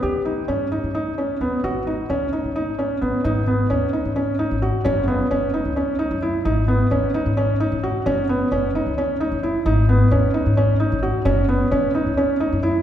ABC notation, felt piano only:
X:1
M:7/8
L:1/8
Q:1/4=131
K:G#m
V:1 name="Felt piano"
=G D C D D C B, | F D C D D C B, | D B, C D C D F | C B, C D C D E |
D B, C D C D F | C B, C D C D E | D B, C D C D F | C B, C D C D E |]